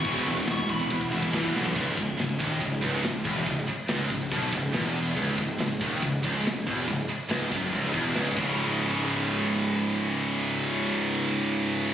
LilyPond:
<<
  \new Staff \with { instrumentName = "Lead electric guitar" } { \time 4/4 \key cis \minor \tempo 4 = 141 cis'''8 r8 cis'''8 b''8 r2 | r1 | r1 | r1 |
r1 | r1 | r1 | }
  \new Staff \with { instrumentName = "Distorted electric guitar" } { \clef bass \time 4/4 \key cis \minor <e, b, e>8 <e, b,>16 <e, b,>16 <e, b,>8 <e, b,>16 <e, b,>16 <e, b,>8 <e, b,>16 <e, b,>16 <e, b, e>8 <e, b, e>16 <e, b,>16 | cis,8 cis,8 cis,8 dis,8 cis,8 cis,8 cis,8 e,8 | cis,8 r8 cis,8 cis,8 b,8 cis,8 e,4 | cis,8 cis,8 cis,8 dis,8 cis,8 cis,8 cis,8 e,8 |
cis,8 r8 cis,8 fis,8 cis,8 e,8 cis,8 <cis, gis, cis>8~ | <cis, gis, cis>1~ | <cis, gis, cis>1 | }
  \new Staff \with { instrumentName = "Distorted electric guitar" } { \clef bass \time 4/4 \key cis \minor <e, b, e>8 <e, b,>16 <e, b,>16 <e, b,>8 <e, b,>16 <e, b,>16 <e, b,>8 <e, b,>16 <e, b,>16 <e, b, e>8 <e, b, e>16 <e, b,>16 | cis,8 cis,8 cis,8 dis,8 cis,8 cis,8 cis,8 e,8 | cis,8 r8 cis,8 cis,8 b,8 cis,8 e,4 | cis,8 cis,8 cis,8 dis,8 cis,8 cis,8 cis,8 e,8 |
cis,8 r8 cis,8 fis,8 cis,8 e,8 cis,8 <cis, gis, cis>8~ | <cis, gis, cis>1~ | <cis, gis, cis>1 | }
  \new Staff \with { instrumentName = "Overdriven electric guitar" } { \clef bass \time 4/4 \key cis \minor <e, b, e gis b e'>2~ <e, b, e gis b e'>8 <e, b, e gis b e'>8 <e, b, e gis b e'>4 | cis,8 cis,8 cis,8 dis,8 cis,8 cis,8 cis,8 e,8 | cis,8 r8 cis,8 cis,8 b,8 cis,8 e,4 | cis,8 cis,8 cis,8 dis,8 cis,8 cis,8 cis,8 e,8 |
cis,8 r8 cis,8 fis,8 cis,8 e,8 cis,8 <cis, gis, cis gis e'>8~ | <cis, gis, cis gis e'>1~ | <cis, gis, cis gis e'>1 | }
  \new Staff \with { instrumentName = "Picked electric bass" } { \clef bass \time 4/4 \key cis \minor e,,8 e,,8 e,,4 e,8 e,,8 e,8 b,,8 | cis,,8 cis,,8 cis,,8 dis,,8 cis,,8 cis,,8 cis,,8 e,,8 | cis,,8 r8 cis,,8 cis,,8 b,,8 cis,,8 e,,4 | cis,,8 cis,,8 cis,,8 dis,,8 cis,,8 cis,,8 cis,,8 e,,8 |
cis,,8 r8 cis,,8 fis,,8 cis,,8 e,,8 cis,,8 cis,,8~ | cis,,1~ | cis,,1 | }
  \new DrumStaff \with { instrumentName = "Drums" } \drummode { \time 4/4 <bd cymr>16 bd16 <bd cymr>16 bd16 <bd cymr sn>16 bd16 <bd cymr>16 bd16 <bd cymr>16 bd16 <bd cymr>16 bd16 <bd cymr sn>16 bd16 sn16 tomfh16 | <cymc bd>8 <bd cymr>8 <cymr sn>8 <bd cymr>8 <bd cymr>8 <bd cymr>8 <cymr sn>8 <bd cymr>8 | <bd cymr>8 cymr8 <cymr sn>8 <bd cymr>8 <bd cymr>8 <bd cymr>8 <cymr sn>8 cymr8 | <bd cymr>8 <bd cymr>8 <cymr sn>8 <bd cymr>8 <bd cymr>8 <bd cymr>8 <cymr sn>8 <bd cymr>8 |
<bd cymr>8 cymr8 <cymr sn>8 <bd cymr>8 <bd cymr>8 <bd cymr>8 <cymr sn>8 <cymc bd>8 | r4 r4 r4 r4 | r4 r4 r4 r4 | }
>>